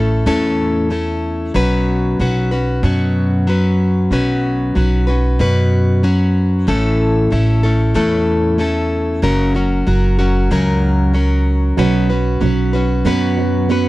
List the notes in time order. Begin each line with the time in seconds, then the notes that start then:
Already playing: A1 A3 C#4 E4 A4
0.26 E2 A2 E3 A3 C#4 E4 A4
0.90 A3 C#4 E4 A4
1.54 B1 B2 F#3 C#4 F#4 B4
2.20 B1 F#3 C#4 F#4 B4
2.51 C#4 F#4 B4
2.83 F#2 B2 F#3 C#4 F#4 B4
3.47 F#3 C#4 F#4 B4
4.11 B1 B2 F#3 C#4 F#4 B4
4.75 B1 F#3 C#4 F#4 B4
5.07 C#4 F#4 B4
5.39 F#2 B2 F#3 C#4 F#4 B4
6.03 F#3 C#4 F#4 B4
6.67 A1 A2 E3 A3 C#4 E4 A4
7.31 A1 A3 C#4 E4 A4
7.63 A3 C#4 E4 A4
7.94 E2 A2 E3 A3 C#4 E4 A4
8.58 A3 C#4 E4 A4
9.22 F#1 F#2 C#3 F#3 C#4 F#4 A#4
9.55 F#3 C#4 F#4 A#4
9.87 F#1 F#3 C#4 F#4 A#4
10.19 F#3 C#4 F#4 A#4
10.50 C#2 F#2 C#3 F#3 C#4 F#4 A#4
11.14 F#3 C#4 F#4 A#4
11.77 B1 B2 F#3 C#4 F#4 B4
12.09 C#4 F#4 B4
12.41 B1 F#3 C#4 F#4 B4
12.73 C#4 F#4 B4
13.05 F#2 B2 F#3 B3 C#4 F#4 B4
13.37 F#3
13.69 F#3 B3 C#4 F#4 B4